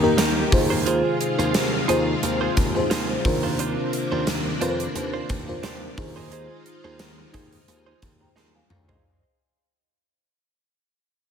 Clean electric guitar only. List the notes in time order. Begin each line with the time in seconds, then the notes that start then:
0.02 muted clean electric guitar stroke
0.18 A#3 D#4 G4
0.37 muted clean electric guitar stroke
0.52 muted clean electric guitar stroke
0.70 F4 G#4 C5
0.86 F4 G#4 C5
1.20 muted clean electric guitar stroke
1.39 F4 G#4 C5
1.73 muted clean electric guitar stroke
1.88 F4 G#4 C5
2.07 muted clean electric guitar stroke
2.22 muted clean electric guitar stroke
2.41 F4 G#4 C5
2.56 muted clean electric guitar stroke
2.75 muted clean electric guitar stroke
2.90 F4 G#4 C5
3.09 muted clean electric guitar stroke
3.24 muted clean electric guitar stroke
3.43 D4 F4 C5
3.59 D4 F4 C5
3.93 muted clean electric guitar stroke
4.11 D4 F4 C5
4.46 muted clean electric guitar stroke
4.61 D4 F4 C5
4.80 muted clean electric guitar stroke
4.95 muted clean electric guitar stroke
5.13 D4 F4 C5
5.29 muted clean electric guitar stroke
5.48 muted clean electric guitar stroke
5.63 D4 F4 C5
5.82 muted clean electric guitar stroke
5.97 muted clean electric guitar stroke
6.16 D#4 G#4 C5
6.31 D#4 G#4 C5
6.66 muted clean electric guitar stroke
6.84 D#4 G#4 C5
7.18 muted clean electric guitar stroke
7.33 D#4 G#4 C5
7.52 muted clean electric guitar stroke
7.68 muted clean electric guitar stroke
7.86 D#4 G#4 C5
8.02 muted clean electric guitar stroke
8.21 muted clean electric guitar stroke
8.36 D#4 G#4 C5
8.55 muted clean electric guitar stroke
8.70 muted clean electric guitar stroke
8.89 D#4 G#4 C5